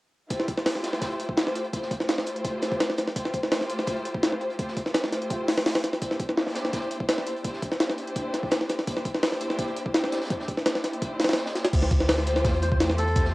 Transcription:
0.30 string section A3 E4 F4 G4 C5, kick, closed hi-hat
0.40 snare
0.48 kick, closed hi-hat
0.57 string section A3 E4 F4 G4 C5, snare
0.66 snare, closed hi-hat, open hi-hat
0.75 snare
0.83 snare, closed hi-hat
0.93 snare, closed hi-hat
1.01 kick, snare, closed hi-hat
1.10 closed hi-hat
1.20 closed hi-hat
1.29 kick
1.37 string section A3 E4 F4 G4 C5, snare, closed hi-hat
1.47 snare
1.55 closed hi-hat
1.64 closed hi-hat
1.73 string section A3 E4 F4 G4 C5, kick, closed hi-hat
1.82 snare
1.91 kick, closed hi-hat
2.00 string section A3 E4 F4 G4 C5, snare
2.08 snare, closed hi-hat
2.18 snare
2.26 closed hi-hat
2.36 closed hi-hat
2.44 kick, closed hi-hat
2.62 snare, closed hi-hat
2.72 kick, closed hi-hat
2.80 snare, closed hi-hat
2.90 snare
2.98 snare, closed hi-hat
3.08 snare, closed hi-hat
3.16 string section A3 E4 F4 G4 C5, kick, closed hi-hat
3.25 snare
3.33 kick, closed hi-hat
3.43 string section A3 E4 F4 G4 C5, snare
3.52 snare, closed hi-hat, open hi-hat
3.61 snare
3.70 closed hi-hat
3.79 snare, closed hi-hat
3.87 kick, closed hi-hat
3.96 closed hi-hat
4.05 closed hi-hat
4.15 kick
4.23 string section A3 E4 F4 G4 C5, snare, closed hi-hat
4.32 snare
4.41 closed hi-hat
4.50 closed hi-hat
4.59 string section A3 E4 F4 G4 C5, kick, closed hi-hat
4.68 snare
4.77 kick, closed hi-hat
4.86 string section A3 E4 F4 G4 C5, snare
4.94 snare, closed hi-hat
5.03 snare
5.12 snare, closed hi-hat
5.22 closed hi-hat
5.30 kick, closed hi-hat
5.47 snare, closed hi-hat, open hi-hat
5.57 snare, closed hi-hat, open hi-hat
5.66 snare, closed hi-hat, open hi-hat
5.75 snare, open hi-hat
5.84 snare, closed hi-hat
5.93 snare, closed hi-hat
6.02 string section A#3 D4 E4 G4 C5, kick, closed hi-hat
6.11 snare
6.20 kick, closed hi-hat
6.29 string section A#3 D4 E4 G4 C5, snare
6.37 snare, closed hi-hat, open hi-hat
6.47 snare
6.55 snare, closed hi-hat
6.65 snare, closed hi-hat
6.73 kick, snare, closed hi-hat
6.82 closed hi-hat
6.91 closed hi-hat
7.00 kick
7.09 string section A#3 D4 E4 G4 C5, snare, closed hi-hat
7.18 snare
7.27 closed hi-hat
7.36 closed hi-hat
7.44 string section A#3 D4 E4 G4 C5, kick, closed hi-hat
7.54 snare
7.62 kick, closed hi-hat
7.72 string section A#3 D4 E4 G4 C5, snare
7.80 snare, closed hi-hat
7.90 snare
7.98 closed hi-hat
8.08 closed hi-hat
8.16 kick, closed hi-hat
8.34 snare, closed hi-hat
8.43 kick, closed hi-hat
8.51 snare, closed hi-hat
8.61 snare
8.69 snare, closed hi-hat
8.79 snare, closed hi-hat
8.87 string section A#3 D4 E4 G4 C5, kick, closed hi-hat
8.97 snare
9.05 kick, closed hi-hat
9.14 string section A#3 D4 E4 G4 C5, snare
9.23 snare, closed hi-hat, open hi-hat
9.32 snare
9.41 closed hi-hat
9.50 snare, closed hi-hat
9.59 kick, closed hi-hat
9.68 closed hi-hat
9.77 closed hi-hat
9.86 kick
9.94 string section A#3 D4 E4 G4 C5, snare, closed hi-hat
10.04 snare
10.12 snare, closed hi-hat
10.21 snare, closed hi-hat
10.25 snare, closed hi-hat
10.30 string section A#3 D4 E4 G4 C5, kick, closed hi-hat
10.39 snare
10.48 kick, closed hi-hat
10.57 string section A#3 D4 E4 G4 C5, snare
10.66 snare, closed hi-hat
10.75 snare
10.84 snare, closed hi-hat
10.93 closed hi-hat
11.02 kick, closed hi-hat
11.20 snare, closed hi-hat, open hi-hat
11.24 snare, open hi-hat
11.29 snare, closed hi-hat, open hi-hat
11.33 snare, open hi-hat
11.38 snare, closed hi-hat
11.46 snare, closed hi-hat
11.55 snare, closed hi-hat
11.65 snare, closed hi-hat
11.73 sub bass D2, string section A3 E4 F4 G4 C5, kick, closed hi-hat, crash
11.82 snare
11.91 kick, closed hi-hat
12.00 string section A3 E4 F4 G4 C5, snare
12.09 snare, closed hi-hat, open hi-hat
12.18 snare
12.27 closed hi-hat
12.36 snare, closed hi-hat
12.44 sub bass E2, kick, snare, closed hi-hat
12.54 closed hi-hat
12.62 melodica C5, closed hi-hat
12.72 melodica C5, kick
12.80 string section A3 E4 F4 G4 C5, snare, closed hi-hat
12.90 snare
12.98 melodica A4, closed hi-hat
13.08 closed hi-hat
13.15 string section A3 E4 F4 G4 C5, kick, closed hi-hat
13.25 snare

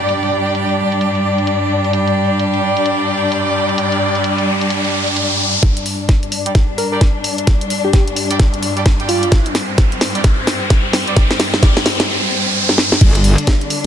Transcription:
Already playing: string section G2 G3 D4, horn section G3 D4 G4 D5, downlifter
0.09 closed hi-hat
0.23 closed hi-hat
0.46 closed hi-hat
0.55 closed hi-hat
0.69 closed hi-hat
0.92 closed hi-hat
1.01 closed hi-hat
1.15 closed hi-hat
1.38 closed hi-hat
1.47 closed hi-hat
1.84 closed hi-hat
1.93 horn section G3 D4 G4 D5, closed hi-hat, riser
2.07 closed hi-hat
2.40 closed hi-hat
2.54 closed hi-hat
2.77 closed hi-hat
2.86 closed hi-hat
3.32 closed hi-hat
3.69 closed hi-hat
3.78 closed hi-hat
3.92 closed hi-hat
4.15 closed hi-hat
4.24 closed hi-hat
4.38 closed hi-hat
4.61 closed hi-hat
4.70 closed hi-hat
4.85 closed hi-hat
5.08 closed hi-hat
5.17 closed hi-hat
5.54 closed hi-hat
5.63 string section G2 G3 D4, kick, snare, closed hi-hat, riser
5.77 closed hi-hat
5.86 open hi-hat
6.09 kick, snare, closed hi-hat
6.23 closed hi-hat
6.32 open hi-hat
6.46 horn section G3 D4 G4 D5, closed hi-hat
6.55 kick, snare, closed hi-hat
6.78 soft synth lead A#4, open hi-hat
6.92 horn section G3 D4 G4 D5, soft synth lead A#4
7.01 kick, snare, closed hi-hat
7.24 open hi-hat
7.38 closed hi-hat
7.47 kick, snare, closed hi-hat
7.61 closed hi-hat
7.70 open hi-hat
7.84 soft synth lead G4
7.93 soft synth lead G4, kick, snare, closed hi-hat
8.08 closed hi-hat
8.16 open hi-hat
8.31 horn section G3 D4 G4 D5, closed hi-hat
8.39 kick, snare, closed hi-hat
8.54 closed hi-hat
8.63 open hi-hat
8.77 horn section G3 D4 G4 D5, closed hi-hat
8.86 kick, snare, closed hi-hat
9.00 horn section G3 D4 G4 D5, closed hi-hat
9.09 soft synth lead F4, open hi-hat
9.23 closed hi-hat
9.32 string section C4, kick, snare, closed hi-hat
9.46 closed hi-hat
9.55 snare, open hi-hat
9.78 kick, snare, closed hi-hat
9.92 closed hi-hat
10.01 snare, open hi-hat
10.15 horn section G3 D4 G4 D5, closed hi-hat
10.24 kick, snare, closed hi-hat
10.47 snare, open hi-hat
10.70 kick, snare, closed hi-hat
10.93 snare, open hi-hat
11.08 horn section G3 D4 G4 D5, closed hi-hat
11.16 horn section G3 D4 G4 D5, kick, snare, closed hi-hat
11.31 snare, closed hi-hat
11.40 snare, open hi-hat
11.54 snare
11.63 horn section G3 D4 G4 D5, kick, snare, closed hi-hat
11.77 snare, closed hi-hat
11.86 snare, open hi-hat
12.00 snare, closed hi-hat
12.69 snare
12.78 snare
12.92 snare
13.01 wobble bass G1, string section D3 G3 D4, kick, closed hi-hat, crash
13.15 closed hi-hat
13.24 open hi-hat
13.38 closed hi-hat
13.47 kick, snare, closed hi-hat
13.61 closed hi-hat
13.70 open hi-hat

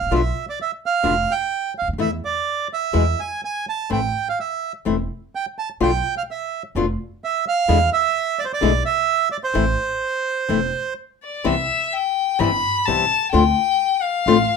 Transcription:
Already playing: bandoneon F5
0.01 upright bass A1
0.06 upright bass A#1
0.11 upright bass B1, nylon-string guitar B2 D3 B3 D4 F4, bandoneon E5
0.50 bandoneon D5
0.62 bandoneon E5
0.86 bandoneon F5
1.03 upright bass F1, nylon-string guitar B2 D3 B3 D4 F4
1.31 bandoneon G5
1.78 upright bass C#2, bandoneon F5
1.88 upright bass D2
1.93 upright bass D#2
1.98 upright bass E2, nylon-string guitar E3 A3 B3 E4, bandoneon E5
2.25 bandoneon D5
2.73 bandoneon E5
2.93 upright bass E2, nylon-string guitar B2 E3 G#3 B3 E4
3.20 bandoneon G#5
3.45 bandoneon G#5
3.69 bandoneon A5
3.90 upright bass A1, nylon-string guitar E3 A3 C4 E4, bandoneon G5
4.29 bandoneon F5
4.40 bandoneon E5
4.85 upright bass E1, nylon-string guitar E3 A3 C4 E4
5.35 bandoneon G5
5.59 bandoneon A5
5.80 upright bass B1, nylon-string guitar B2 D3 B3 D4 F4, bandoneon G5
6.17 bandoneon F5
6.31 bandoneon E5
6.75 upright bass F1, nylon-string guitar B2 D3 B3 D4 F4
7.24 bandoneon E5
7.48 bandoneon F5
7.68 upright bass E2, nylon-string guitar B2 D3 G#3 B3 E4
7.93 bandoneon E5
8.39 bandoneon D5
8.45 bandoneon C5
8.53 bandoneon D5
8.61 upright bass B1, nylon-string guitar B2 D3 G#3 B3 E4
8.86 bandoneon E5
9.32 bandoneon D5
9.44 bandoneon C5
9.54 upright bass A1, nylon-string guitar E3 A3 C4 E4
10.48 upright bass E1, nylon-string guitar E3 A3 C4 E4
11.23 violin D5
11.44 upright bass C2, nylon-string guitar C3 E3 G3 B3 E4, violin E5
11.94 violin G5
12.39 upright bass G1, nylon-string guitar C3 E3 G3 B3 E4, violin B5
12.86 upright bass C2, nylon-string guitar C3 E3 G3 B3 E4, violin A5
13.32 upright bass D2, nylon-string guitar D3 A3 C4 F4, violin G5
14.02 violin F5
14.26 upright bass A1, nylon-string guitar D3 A3 C4 F4

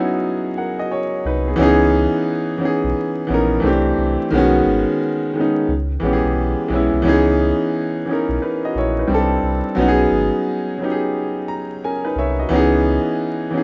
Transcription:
Already playing: upright piano F#3 B3 C#4 D#4 E4 G#4
0.00 upright piano F#4
0.58 upright piano A#4 F#5
0.79 upright piano F#4 D#5
0.91 upright piano C#5
1.25 sub bass C2, upright piano D#4 B4
1.48 upright piano B3 G#4
1.56 sub bass C#2, upright piano E3 B3 C#4
1.61 upright piano D#4 G#4
2.58 upright piano E3 B3 C#4
2.63 upright piano D#4 G#4
2.84 sub bass B1
3.27 sub bass A#1, upright piano E3 B3 C#4
3.32 upright piano D#4 A#4
3.60 sub bass C2, upright piano E3 A3 C4
3.65 upright piano D4 G4
3.98 sub bass C2
4.30 sub bass B1, upright piano D#3 G#3 B3
4.35 upright piano C#4 F#4
4.66 sub bass G#1
5.34 upright piano D#3 G#3 B3
5.39 upright piano C#4 D#4
5.68 sub bass C#2
6.00 sub bass A#1, upright piano E3 G#3 B3
6.05 upright piano C#4 G4
6.13 upright piano G#4
6.24 sub bass B1
6.36 sub bass B1
6.68 sub bass B1, upright piano E3 G#3 B3
6.74 upright piano C#4 E4
6.93 sub bass C2
7.02 sub bass C#2, upright piano E3 B3 C#4
7.07 upright piano D#4 G#4
8.06 upright piano E3 B3 C#4
8.11 upright piano D#4 A#4
8.29 sub bass B1
8.42 upright piano D#4 B4
8.65 upright piano F#4 D#5
8.75 sub bass A#1, upright piano E4 C#5
8.99 upright piano D#4 B4
9.08 sub bass C2, upright piano G3 C4 D4
9.13 upright piano E4 A4
9.43 sub bass C2
9.75 sub bass B1, upright piano F#3 B3 C#4
9.80 upright piano D#4 F#4
9.88 upright piano G#4
10.11 sub bass G#1
10.78 upright piano F#3 B3 C#4
10.84 upright piano D#4 G4
10.92 upright piano G#4
11.48 upright piano A#5
11.84 upright piano C#4 A#4 G#5
12.05 upright piano D#4 B4
12.16 sub bass C2, upright piano C#5 E5
12.39 upright piano F#4 D#5
12.49 sub bass C#2, upright piano E3 B3 C#4
12.54 upright piano D#4 G#4
13.50 upright piano E3 B3 C#4
13.56 upright piano D#4 G#4

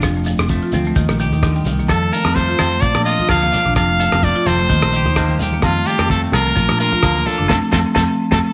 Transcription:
Already playing: clean electric guitar F4
0.02 fingered electric bass F1, clean electric guitar F2, marimba F3, kick, cross-stick, shekere
0.14 marimba A3, shekere
0.24 marimba F3, muted clean electric guitar stroke, closed hi-hat, shekere
0.38 fingered electric bass F1, marimba C4, cross-stick, shekere
0.49 clean electric guitar F3 A3, kick, high conga, shekere
0.61 marimba F4, shekere
0.72 fingered electric bass D2, marimba F3, clean electric guitar C4, closed hi-hat, high conga, low conga, shekere
0.85 marimba A3, shekere
0.95 fingered electric bass D#2, marimba D#3, clean electric guitar D#3, kick, shekere
1.08 fingered electric bass A#1, marimba A#3, cross-stick, shekere
1.19 marimba D#3, clean electric guitar G4, closed hi-hat, shekere
1.31 fingered electric bass D#2, marimba D#4, high conga, low conga, shekere
1.43 clean electric guitar D3, marimba D#3, kick, cross-stick, shekere
1.55 marimba G3, high conga, shekere
1.65 fingered electric bass C2, clean electric guitar D#3, closed hi-hat, low conga, shekere
1.79 marimba A#3, high conga, shekere
1.88 clean electric guitar F2, fingered electric bass F2, marimba F3, trumpet A4, kick, cross-stick, low agogo, shekere
2.03 marimba A3
2.13 marimba F3, clean electric guitar A4, trumpet A#4, closed hi-hat, shekere
2.25 fingered electric bass F2, marimba C4, cross-stick, low agogo
2.35 clean electric guitar F3 A3, trumpet C5, kick, high conga, shekere
2.48 marimba F4, shekere
2.59 fingered electric bass F2, marimba F3, clean electric guitar C4, cross-stick, closed hi-hat, high conga, low agogo, shekere
2.72 marimba A3, shekere
2.81 fingered electric bass A#1, marimba F3, trumpet D5, muted clean electric guitar stroke, kick, shekere
2.95 fingered electric bass A#2, marimba D4, cross-stick, low agogo
3.05 marimba F3, clean electric guitar F4, trumpet D#5, closed hi-hat, shekere
3.19 marimba F4, high conga, low conga, shekere
3.28 fingered electric bass D2, clean electric guitar F3 A#3, marimba F3, trumpet F5, kick, cross-stick, low agogo, shekere
3.42 marimba A#3, high conga, shekere
3.52 clean electric guitar D4, closed hi-hat, low conga, shekere
3.65 fingered electric bass A#1, marimba D4, high conga
3.75 fingered electric bass F1, clean electric guitar F2, marimba F3, trumpet F5, kick, cross-stick, low agogo, shekere
3.89 marimba A3
3.99 marimba F3, clean electric guitar A4, closed hi-hat, shekere
4.12 fingered electric bass F1, marimba C4, cross-stick, low agogo
4.23 clean electric guitar F3 A3, trumpet D5, kick, high conga, shekere
4.35 marimba F4, shekere
4.46 fingered electric bass F1, marimba F3, clean electric guitar C4, trumpet C5, closed hi-hat, high conga, low conga, low agogo, shekere
4.59 marimba A3, shekere
4.69 fingered electric bass D#2, marimba D#3, clean electric guitar D#3, kick, shekere
4.82 fingered electric bass A#1, marimba A#3, cross-stick, low agogo
4.92 marimba D#3, clean electric guitar G4, closed hi-hat, shekere
5.05 fingered electric bass D#2, marimba D#4, high conga, low conga, shekere
5.16 marimba D#3, clean electric guitar A#3, muted clean electric guitar stroke, kick, cross-stick, low agogo, shekere
5.29 marimba G3, high conga, shekere
5.39 fingered electric bass D#2, clean electric guitar G4, closed hi-hat, low conga, shekere
5.52 marimba A#3, high conga
5.62 fingered electric bass F2, clean electric guitar F2, marimba F3, trumpet F4, kick, cross-stick, low agogo, shekere
5.77 marimba A3
5.86 marimba F3, clean electric guitar F4, trumpet G4, closed hi-hat, shekere
5.99 fingered electric bass F2, marimba C4, cross-stick, low agogo
6.10 clean electric guitar A3 C4, trumpet A4, kick, high conga, shekere
6.24 shekere
6.32 fingered electric bass C2, marimba F3, clean electric guitar F4, trumpet A#4, cross-stick, closed hi-hat, high conga, low conga, low agogo, shekere
6.46 marimba A3, shekere
6.56 fingered electric bass A#1, clean electric guitar A#2, marimba F3, kick, shekere
6.69 fingered electric bass A#2, marimba D4, cross-stick, low agogo
6.79 marimba F3, clean electric guitar F4, trumpet A#4, closed hi-hat, shekere
6.92 marimba F4, high conga, low conga, shekere
7.03 fingered electric bass D2, clean electric guitar F3 A#3, marimba F3, kick, cross-stick, low agogo, shekere
7.16 marimba A#3, high conga, shekere
7.26 clean electric guitar D4, trumpet A4, closed hi-hat, low conga, shekere
7.38 fingered electric bass F#1, marimba D4, high conga
7.48 fingered electric bass F2, marimba F3 A3 C4, clean electric guitar F3 A3 C4, trumpet A4, kick, snare, low conga, low agogo, shekere
7.71 fingered electric bass F2, clean electric guitar F3 A3 C4, marimba F3 A3 C4, trumpet A4, kick, snare, low conga, low agogo, shekere
7.95 fingered electric bass F2, marimba F3 A3 C4, clean electric guitar F3 A3 C4, trumpet A4, kick, snare, low conga, low agogo, shekere
8.31 fingered electric bass F2, marimba F3 A3 C4, clean electric guitar F3 A3 C4, trumpet A4, kick, snare, low conga, low agogo, shekere

